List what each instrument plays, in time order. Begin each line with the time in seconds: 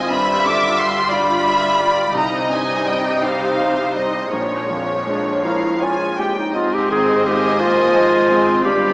Already playing: cello section G#2, grand piano G#2 D#3 C4 F4 C5, harp G#2 D#3 F3 C4 F4 C5, violin section G#5
0.10 grand piano G2, cello section G2, harp G2, viola section G3 F4, violin section E5 B5
0.46 grand piano D3, harp D3, violin section D6
0.78 grand piano G3, harp F4, violin section C6
1.11 grand piano F4, harp G4, violin section D5 B5
1.45 grand piano D5, harp D5, violin section E5
1.80 grand piano G3, harp F4, violin section D5
2.14 grand piano C2, cello section C3, harp C3, viola section G3 D#4, violin section D#5 A#5
2.50 grand piano G2, harp C4, violin section G#5
2.86 grand piano G3, harp D#4, violin section G5
3.21 grand piano D#4, harp G4, violin section C5 F5
3.58 grand piano C5, harp C5
3.95 grand piano G3, harp D#4, violin section D#5
4.30 grand piano A#1, cello section A#2, harp A#2, viola section F3 G#3, violin section C#5
4.70 grand piano F2, harp F3
5.06 grand piano G#3, clarinet D4
5.44 grand piano F3, clarinet E4, harp A#4, violin section F5
5.81 clarinet F4, grand piano C#5, harp C#5, violin section G#5
6.18 grand piano G#3, clarinet G4, violin section G5
6.39 clarinet D#4
6.54 double bass section G#1, harp G#2, cello section G#2, grand piano G#2, viola section C4, clarinet F4, violin section C5 D#5 G#5
6.74 clarinet G4
6.90 harp D#3, grand piano D#3, clarinet G#4
7.24 grand piano G#3, harp F4, clarinet G4
7.60 viola section A#3, grand piano F4, clarinet F4, harp C5
7.95 viola section G#3, harp G#4, grand piano C5
8.29 grand piano G#3, harp G#3, viola section C4
8.62 double bass section G1, cello section G2, harp G2, grand piano G2, viola section G3, clarinet G4, violin section F5 B5
8.67 violin section D5